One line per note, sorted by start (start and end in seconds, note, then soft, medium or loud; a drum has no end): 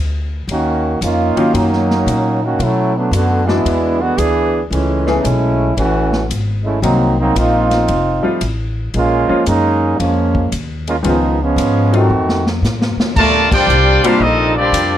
0.00 0.46 D2 medium
0.48 0.99 D#2 medium
0.48 0.98 D#3 medium
0.48 0.98 A#3 medium
0.48 0.98 C#4 medium
0.48 0.98 F#4 medium
0.48 ride medium
1.01 1.34 F2 medium
1.01 1.53 A#3 medium
1.01 1.53 C#4 medium
1.01 1.53 D#4 medium
1.01 1.54 F4 medium
1.01 hi-hat pedal medium
1.01 ride medium
1.36 2.03 D#3 medium
1.36 2.03 F#3 medium
1.36 2.04 A#3 medium
1.36 2.04 C#4 medium
1.36 2.04 F4 medium
1.36 muted upright bass stroke soft
1.36 ride soft
1.54 2.05 F#2 medium
1.54 2.42 F#3 medium
1.54 2.42 A#3 medium
1.54 2.41 C#4 medium
1.54 2.42 D#4 medium
1.54 ride medium
1.73 snare soft
1.91 snare soft
2.06 2.58 A#2 medium
2.06 hi-hat pedal medium
2.06 ride medium
2.42 2.59 D#3 medium
2.42 2.60 A#3 medium
2.42 2.60 C#4 medium
2.42 2.60 F#4 medium
2.59 3.10 B2 medium
2.59 2.95 F#3 medium
2.59 2.95 A3 medium
2.59 2.96 C#4 medium
2.59 2.96 E4 medium
2.59 ride medium
2.96 3.13 F#3 medium
2.96 3.13 A3 medium
2.96 3.12 B3 medium
2.96 3.13 D4 medium
3.11 3.63 F#2 medium
3.11 3.48 D3 medium
3.11 3.48 A3 medium
3.11 3.46 B3 medium
3.11 3.48 F#4 medium
3.11 hi-hat pedal soft
3.11 ride medium
3.47 4.14 E3 medium
3.47 4.00 G#3 medium
3.47 4.15 G#3 medium
3.47 3.99 B3 medium
3.47 4.15 B3 medium
3.47 4.01 D4 medium
3.47 4.15 D4 medium
3.47 4.00 E4 medium
3.47 4.15 F#4 medium
3.47 snare medium
3.65 4.16 E2 medium
3.65 ride medium
4.01 4.18 D3 medium
4.01 4.18 G#3 medium
4.01 4.16 B3 medium
4.01 4.18 F#4 loud
4.17 4.69 D2 medium
4.17 4.62 E3 medium
4.17 4.62 B3 medium
4.17 4.61 D4 medium
4.17 4.62 G#4 loud
4.17 hi-hat pedal medium
4.17 ride medium
4.71 5.22 C#2 medium
4.71 5.16 E3 medium
4.71 5.16 G#3 medium
4.71 5.16 A3 medium
4.71 5.16 C#4 medium
4.71 ride medium
5.07 5.22 E3 medium
5.07 5.23 A3 medium
5.07 5.22 B3 medium
5.07 5.22 C#4 medium
5.07 5.23 G#4 medium
5.07 snare soft
5.20 5.75 B1 medium
5.20 5.76 G#3 medium
5.20 5.76 A3 medium
5.20 5.75 C#4 medium
5.20 5.24 D#4 medium
5.20 5.76 E4 medium
5.25 hi-hat pedal medium
5.25 ride medium
5.76 6.28 A1 medium
5.76 6.26 E3 medium
5.76 6.26 A3 medium
5.76 6.25 C#4 medium
5.76 6.26 F#4 medium
5.76 ride medium
6.13 snare soft
6.30 6.81 G#1 medium
6.30 hi-hat pedal medium
6.30 ride medium
6.63 6.80 G#3 medium
6.63 6.81 A3 medium
6.63 6.80 C#4 medium
6.63 6.80 E4 medium
6.82 7.33 C2 medium
6.82 7.14 D#3 medium
6.82 7.15 F#3 medium
6.82 7.14 F#3 soft
6.82 7.15 A#3 medium
6.82 7.14 A#3 soft
6.82 7.15 C4 medium
6.82 7.15 C4 soft
6.82 7.15 D#4 medium
6.82 ride medium
7.19 7.35 F#3 medium
7.19 7.35 A#3 medium
7.19 7.35 C4 medium
7.19 7.35 D#4 loud
7.35 7.86 A#1 medium
7.35 7.88 A#3 medium
7.35 8.41 C4 medium
7.35 8.41 D#4 medium
7.35 8.42 F4 loud
7.35 hi-hat pedal medium
7.35 ride medium
7.71 snare soft
7.71 ride soft
7.88 8.21 F1 medium
7.88 ride medium
8.23 8.39 F3 medium
8.23 8.39 G3 medium
8.23 8.39 A3 medium
8.23 8.39 C4 medium
8.23 8.39 F4 medium
8.23 muted upright bass stroke soft
8.41 8.92 A1 medium
8.41 hi-hat pedal medium
8.41 ride medium
8.94 9.26 A#1 medium
8.94 9.43 G#3 medium
8.94 9.44 A#3 medium
8.94 9.44 C#4 medium
8.94 9.44 F4 loud
8.94 ride medium
9.28 9.44 F3 medium
9.28 9.44 G#3 medium
9.28 9.45 A#3 medium
9.28 9.45 C#4 medium
9.28 9.45 F4 medium
9.28 muted upright bass stroke soft
9.46 9.98 F#2 medium
9.46 9.95 G#3 medium
9.46 9.95 A#3 medium
9.46 9.95 C#4 medium
9.46 9.95 D#4 loud
9.46 hi-hat pedal medium
9.46 ride medium
9.99 10.50 F2 medium
9.99 10.52 F3 medium
9.99 10.51 G#3 medium
9.99 10.52 A#3 medium
9.99 10.52 C#4 medium
9.99 ride medium
10.35 kick medium
10.52 11.03 D#2 medium
10.52 hi-hat pedal medium
10.52 ride medium
10.87 10.96 G#3 medium
10.87 10.95 A#3 medium
10.87 10.96 C#4 medium
10.87 10.95 F4 medium
10.87 ride soft
11.03 11.55 C#2 medium
11.03 11.35 D#3 medium
11.03 11.38 F3 medium
11.03 11.35 G#3 medium
11.03 11.38 G#3 medium
11.03 11.36 B3 medium
11.03 11.38 B3 medium
11.03 11.36 C#4 medium
11.03 11.38 D#4 medium
11.03 11.36 F4 medium
11.03 ride medium
11.41 11.93 F3 medium
11.41 11.93 G#3 medium
11.41 11.93 B3 medium
11.41 11.93 C#4 loud
11.56 12.08 G#2 medium
11.56 hi-hat pedal medium
11.56 ride medium
11.92 12.46 D#3 medium
11.92 12.08 F#3 medium
11.92 12.08 A3 medium
11.92 12.46 A3 medium
11.92 12.08 C4 medium
11.92 12.46 C4 medium
11.92 12.08 D#4 medium
11.92 12.09 F4 medium
11.92 12.46 F#4 medium
11.92 ride soft
12.10 12.61 F2 medium
12.29 snare medium
12.47 snare medium
12.62 12.95 A2 medium
12.62 snare medium
12.62 hi-hat pedal medium
12.82 snare medium
12.96 muted upright bass stroke soft
12.96 snare medium
13.16 13.67 D2 medium
13.16 14.98 C3 medium
13.16 14.98 G3 medium
13.16 13.49 A3 medium
13.16 14.98 A#3 medium
13.16 14.98 D4 medium
13.16 13.49 F4 medium
13.16 13.49 A#4 loud
13.16 13.49 D5 loud
13.16 13.49 A5 loud
13.16 kick medium
13.16 crash loud
13.51 14.03 G3 loud
13.51 14.04 D4 loud
13.51 14.05 F4 loud
13.51 14.03 G4 loud
13.51 14.04 C5 loud
13.51 14.05 D5 loud
13.51 14.05 G5 loud
13.51 kick loud
13.51 crash medium
13.67 14.00 C2 loud
13.67 hi-hat pedal medium
14.04 14.19 G3 medium
14.04 14.22 G3 medium
14.04 14.19 A#3 medium
14.04 14.20 C4 medium
14.04 14.21 D4 medium
14.04 14.20 D4 medium
14.04 14.22 D4 medium
14.04 14.21 F4 medium
14.04 14.20 F4 medium
14.04 14.23 G4 medium
14.04 14.22 C5 medium
14.04 14.22 F5 loud
14.04 ride medium
14.20 14.71 A#1 medium
14.20 14.56 C4 medium
14.20 14.56 D#4 medium
14.20 14.56 F4 medium
14.20 14.57 A4 medium
14.20 14.56 D#5 loud
14.57 14.98 F3 medium
14.57 14.98 G3 medium
14.57 14.98 C4 medium
14.57 14.98 D4 medium
14.57 14.98 F4 medium
14.57 14.98 G4 medium
14.57 14.98 D5 loud
14.72 14.98 F2 loud
14.72 hi-hat pedal medium
14.72 ride medium